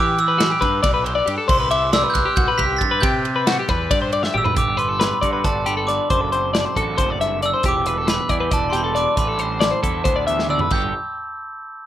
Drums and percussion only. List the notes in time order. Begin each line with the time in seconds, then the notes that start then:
0.18 ride
0.40 snare, ride
0.62 kick, snare, ride
0.84 kick, snare, ride
1.06 ride
1.27 ride
1.49 kick, crash
1.71 ride
1.93 snare, ride
2.15 kick, snare, ride
2.37 kick, ride
2.59 kick, ride
2.81 kick, ride
3.03 kick, ride
3.25 ride
3.47 snare, ride
3.69 kick, snare, ride
3.91 kick, ride
4.12 ride
4.24 snare
4.34 mid tom
4.45 floor tom
4.56 kick, closed hi-hat
4.79 closed hi-hat
5.01 snare, closed hi-hat
5.23 kick, closed hi-hat
5.44 kick, snare, closed hi-hat
5.66 closed hi-hat
5.88 snare, closed hi-hat
6.10 kick, closed hi-hat
6.32 closed hi-hat
6.55 snare, closed hi-hat
6.76 kick, closed hi-hat
6.98 kick, snare, closed hi-hat
7.21 snare, closed hi-hat
7.42 closed hi-hat
7.63 kick, closed hi-hat
7.86 closed hi-hat
8.08 snare, closed hi-hat
8.29 kick, closed hi-hat
8.51 kick, closed hi-hat
8.73 closed hi-hat
8.96 snare, closed hi-hat
9.17 kick, closed hi-hat
9.39 closed hi-hat
9.61 snare, closed hi-hat
9.84 kick, closed hi-hat
10.05 kick, closed hi-hat
10.28 closed hi-hat
10.39 snare
10.49 mid tom
10.59 floor tom
10.70 kick, crash